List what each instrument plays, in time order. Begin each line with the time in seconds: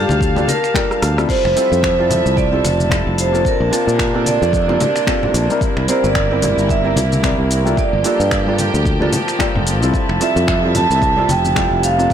Already playing: hollow-body jazz guitar G3 A#3 D4 F4 A4, vibraphone G4, string section G4 F5 A5
0.09 fretless electric bass D2, muted conga, shaker
0.21 kick, shaker
0.36 hollow-body jazz guitar G3 A#3 D4 F4 A4, muted conga, shaker
0.48 vibraphone A#4, open hi-hat, high conga, shaker
0.64 finger snap, shaker
0.74 hollow-body jazz guitar G3 A#3 D4 F4 A4, finger snap, kick, shaker
0.91 cross-stick, shaker
1.02 fretless electric bass D2, cross-stick, open hi-hat, shaker
1.17 hollow-body jazz guitar G3 C4 E4 F4 A4, cross-stick, shaker
1.29 string section C3 F3 E5 A5, vibraphone C5, kick, crash, shaker
1.45 fretless electric bass F1, finger snap
1.56 hollow-body jazz guitar G3 C4 E4 F4 A4, open hi-hat, shaker
1.72 fretless electric bass F2, shaker
1.83 finger snap, kick, shaker
1.98 hollow-body jazz guitar G3 C4 E4 F4 A4
2.10 open hi-hat, high conga, low conga, shaker
2.26 fretless electric bass C2, shaker
2.37 vibraphone D5, kick, shaker
2.52 hollow-body jazz guitar G3 C4 E4 F4 A4
2.64 fretless electric bass F1, open hi-hat, muted conga, high conga, shaker
2.80 high conga, shaker
2.90 hollow-body jazz guitar G3 C4 E4 F4 A4, finger snap, kick, shaker
3.07 fretless electric bass F1
3.18 vibraphone C5, open hi-hat, shaker
3.32 hollow-body jazz guitar A#3 C4 D4 F4 A4, shaker
3.45 string section A#3 D4, vibraphone A#4, kick, shaker
3.60 fretless electric bass A#1
3.71 hollow-body jazz guitar A#3 C4 D4 F4 A5, open hi-hat, shaker
3.87 fretless electric bass A#2, shaker
3.99 finger snap, kick, shaker
4.14 hollow-body jazz guitar A#3 C4 D4 F4 A4
4.26 vibraphone D5, open hi-hat, high conga, shaker
4.42 fretless electric bass F2, shaker
4.53 kick, shaker
4.68 hollow-body jazz guitar A#3 C4 D4 F4 A4, muted conga
4.80 open hi-hat, high conga, low conga, shaker
4.96 finger snap, shaker
5.07 hollow-body jazz guitar A#3 C4 D4 F4 A4, finger snap, kick, shaker
5.23 low conga
5.34 fretless electric bass A#1, open hi-hat, shaker
5.50 hollow-body jazz guitar G3 C4 D4 E4 A#4, shaker
5.61 string section G3 E4, kick, shaker
5.77 fretless electric bass C2, finger snap
5.88 hollow-body jazz guitar G3 C4 D4 E4 A#4, vibraphone C5, open hi-hat, shaker
6.04 fretless electric bass G1, vibraphone D5, shaker
6.15 finger snap, kick, shaker
6.30 hollow-body jazz guitar G3 C4 D4 E4 A#4
6.42 open hi-hat, high conga, low conga, shaker
6.57 fretless electric bass G1, shaker
6.69 vibraphone E5, kick, shaker
6.84 hollow-body jazz guitar G3 C4 D4 E4 A#4
6.96 fretless electric bass C2, open hi-hat, muted conga, high conga, shaker
7.13 high conga, shaker
7.23 hollow-body jazz guitar G3 C4 D4 E4 A#4, finger snap, kick, shaker
7.38 fretless electric bass C2
7.51 open hi-hat, shaker
7.65 hollow-body jazz guitar G3 A#3 D4 F4 A4, shaker
7.77 string section F3 G4 A5, vibraphone D5, kick, shaker
7.93 fretless electric bass G1
8.04 hollow-body jazz guitar G3 A#3 D4 F4 A4, open hi-hat, shaker
8.20 fretless electric bass G2, shaker
8.31 finger snap, kick, shaker
8.47 hollow-body jazz guitar G3 A#3 D4 F4 A4
8.59 open hi-hat, high conga, shaker
8.74 fretless electric bass D2, shaker
8.86 kick, shaker
9.00 hollow-body jazz guitar G3 A#3 D4 F4 A4, muted conga
9.12 open hi-hat, high conga, low conga, shaker
9.28 finger snap, shaker
9.39 hollow-body jazz guitar G3 A#3 D4 F4 A4, finger snap, kick, shaker
9.55 fretless electric bass F1, low conga
9.67 open hi-hat, shaker
9.81 fretless electric bass C2, hollow-body jazz guitar G3 C4 E4 F4 A4, shaker
9.94 string section C3 E5, kick, shaker
10.09 fretless electric bass F1, finger snap
10.20 hollow-body jazz guitar G3 C4 E4 F4 A4, vibraphone E5, open hi-hat, shaker
10.36 fretless electric bass F2, shaker
10.48 finger snap, kick, shaker
10.63 hollow-body jazz guitar G3 C4 E4 F4 A4
10.75 vibraphone A5, open hi-hat, high conga, low conga, shaker
10.90 fretless electric bass C2, shaker
11.02 kick, shaker
11.16 hollow-body jazz guitar G3 C4 E4 F4 A4
11.29 fretless electric bass F1, vibraphone G5, open hi-hat, muted conga, high conga, shaker
11.45 high conga, shaker
11.55 hollow-body jazz guitar G3 C4 E4 F4 A4, finger snap, kick, shaker
11.71 fretless electric bass F1
11.83 vibraphone F5, open hi-hat, shaker
11.98 hollow-body jazz guitar A#3 C4 D4 F4 A4, shaker
12.10 kick